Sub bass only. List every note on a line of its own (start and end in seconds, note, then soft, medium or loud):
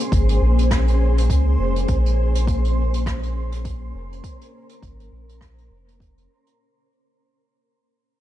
0.12 0.38 G#1 loud
0.42 1.29 A#1 medium
1.30 1.56 C#2 medium
1.59 1.85 F1 medium
1.89 3.92 A#1 loud
3.94 4.21 F1 loud
4.83 5.09 G#1 loud
5.12 5.70 A#1 medium
5.71 6.27 F1 medium